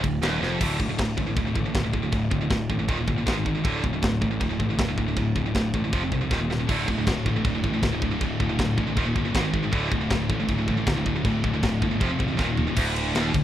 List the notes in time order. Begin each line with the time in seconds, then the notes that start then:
0.04 D1 D2, kick, ride
0.23 D#1 D#2, snare, ride
0.41 F1 F2, snare
0.61 D1 D2 A2 D3, kick, crash, china
0.79 D1 D2 A2, kick
0.89 D2 A2
0.98 D1 D2 A2, kick, snare, china
1.17 A1 D2 A2, kick
1.26 D2 A2
1.36 D1 D2 A2, kick, china
1.45 D2 A2
1.55 A1 D2 A2, kick
1.64 D2 A2
1.74 D1 D2 A2, kick, snare, china
1.83 D2 A2
1.93 D2 A2, kick
2.02 D2 A2
2.12 D1 D2 A2, kick, china
2.30 D1 D2 A2, kick
2.42 D2 A2
2.50 D1 D2 A2, kick, snare, china
2.69 A1 D2 A2, kick
2.79 D2 A2
2.88 D#1 D#2 A#2 D#3, kick, china
2.99 D#2 A#2
3.07 G1 D#2 A#2, kick
3.16 D#2 A#2
3.26 G#1 G#2 D#3 G#3, kick, snare, china
3.36 G#2 D#3
3.46 G#2 D#3, kick
3.57 G#2 D#3
3.64 D1 D2 A2 D3, kick, china
3.83 D1 D2 A2, kick
3.93 D2 A2
4.03 D1 D2 A2, kick, snare, china
4.21 A1 D2 A2, kick
4.31 D2 A2
4.40 D1 D2 A2, kick, china
4.49 D2 A2
4.59 A1 D2 A2, kick
4.69 D2 A2
4.78 D1 D2 A2, kick, snare, china
4.89 D2 A2
4.98 D2 A2, kick
5.07 D2 A2
5.16 D1 D2 A2, kick, china
5.35 D1 D2 A2, kick
5.46 D2 A2
5.55 D1 D2 A2, kick, snare, china
5.73 A1 D2 A2, kick
5.84 D2 A2
5.93 F1 F2 C3 F3, kick, china
6.03 F2 C3
6.12 C2 F2 C3, kick
6.21 F2 C3
6.31 D#1 D#2 A#2 D#3, kick, snare
6.40 D#2 A#2
6.50 D#2 A#2, snare
6.60 D#2 A#2
6.68 D1 D2 A2 D3, kick, china, crash
6.88 D1 D2 A2, kick
6.98 D2 A2
7.07 D1 D2 A2, kick, snare, china
7.25 A1 D2 A2, kick
7.37 D2 A2
7.45 D1 D2 A2, kick, china
7.55 D2 A2
7.64 A1 D2 A2, kick
7.73 D2 A2
7.82 D1 D2 A2, kick, snare, china
7.93 D2 A2
8.02 D2 A2, kick
8.12 D2 A2
8.21 D1 D2 A2 D3, kick, china
8.40 D1 D2 A2, kick
8.49 D2 A2
8.58 D1 D2 A2, kick, snare, china
8.78 A1 D2 A2, kick
8.87 D2 A2
8.96 D#1 D#2 A#2 D#3, kick, china
9.06 D#2 A#2
9.16 G1 D#2 A#2, kick
9.25 D#2 A#2
9.34 G#1 G#2 D#3 G#3, kick, snare, china
9.44 G#2 D#3
9.54 G#2 D#3, kick
9.64 G#2 D#3
9.72 D1 D2 A2 D3, kick, china
9.91 D1 D2 A2, kick
10.02 D2 A2
10.10 D1 D2 A2, kick, snare, china
10.29 A1 D2 A2, kick
10.39 D2 A2
10.48 D1 D2 A2, kick, china
10.59 D2 A2
10.67 A1 D2 A2, kick
10.78 D2 A2
10.86 D1 D2 A2, kick, snare, china
10.98 D2 A2
11.06 D2 A2, kick
11.16 D2 A2
11.25 D1 D2 A2 D3, kick, china
11.44 D1 D2 A2, kick
11.53 D2 A2
11.63 D1 D2 A2, kick, snare, china
11.82 G1 D2 A2, kick
11.91 D2 A2
12.00 F1 F2 C3 F3, kick, china
12.10 F2 C3
12.20 D1 F2 C3, kick
12.29 F2 C3
12.39 D#1 D#2 A#2 D#3, kick, snare
12.48 D#2 A#2
12.57 D#2 A#2, floor tom
12.69 D#2 A#2
12.76 D1 D2, kick, crash
12.96 ride
13.15 D#1 D#2, snare, ride
13.34 D1 D2, kick, ride